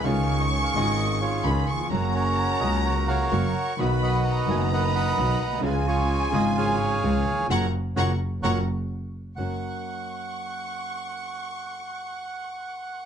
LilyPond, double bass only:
\new Staff \with { instrumentName = "Double bass" } { \clef bass \time 4/4 \key fis \major \tempo 4 = 129 cis,4. gis,,4. cis,8 r8 | fis,,4. cis,4. fis,,8 r8 | b,,4. fis,,4. b,,8 b,,8 | cis,4. gis,,4. cis,8 r8 |
fis,,8 r8 fis,,8 r8 fis,,8 r4. | fis,,8 r2. r8 | r1 | }